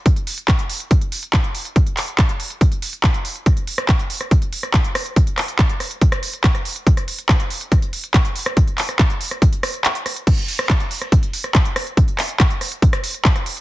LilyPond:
\new DrumStaff \with { instrumentName = "Drums" } \drummode { \time 4/4 \tempo 4 = 141 <hh bd>16 hh16 hho16 hh16 <hc hh bd>16 hh16 hho16 hh16 <hh bd>16 hh16 hho16 hh16 <hc hh bd>16 hh16 hho16 hh16 | <hh bd>16 hh16 <hc hho>16 hh16 <hc hh bd>16 hh16 hho16 hh16 <hh bd>16 hh16 hho16 hh16 <hc hh bd>16 hh16 hho16 hh16 | <hh bd ss>16 hh16 hho16 <hh ss>16 <hc hh bd>16 hh16 hho16 <hh ss>16 <hh bd>16 hh16 hho16 <hh ss>16 <hc hh bd>16 hh16 <hho ss>16 hh16 | <hh bd>16 hh16 <hc hho ss>16 hh16 <hc hh bd>16 hh16 <hho ss>16 hh16 <hh bd>16 <hh ss>16 hho16 hh16 <hc hh bd>16 <hh ss>16 hho16 hh16 |
<hh bd>16 <hh ss>16 hho16 hh16 <hc hh bd ss>16 hh16 hho16 hh16 <hh bd ss>16 hh16 hho16 hh16 <hc hh bd ss>16 hh16 hho16 <hh ss>16 | <hh bd>16 hh16 <hc hho>16 <hh ss>16 <hc hh bd>16 hh16 hho16 <hh ss>16 <hh bd>16 hh16 <hho ss>16 hh16 <hc hh>16 hh16 <hho ss>16 hh16 | <cymc hh bd ss>16 hh16 hho16 <hh ss>16 <hc hh bd>16 hh16 hho16 <hh ss>16 <hh bd>16 hh16 hho16 <hh ss>16 <hc hh bd>16 hh16 <hho ss>16 hh16 | <hh bd>16 hh16 <hc hho ss>16 hh16 <hc hh bd>16 hh16 <hho ss>16 hh16 <hh bd>16 <hh ss>16 hho16 hh16 <hc hh bd>16 <hh ss>16 hho16 hh16 | }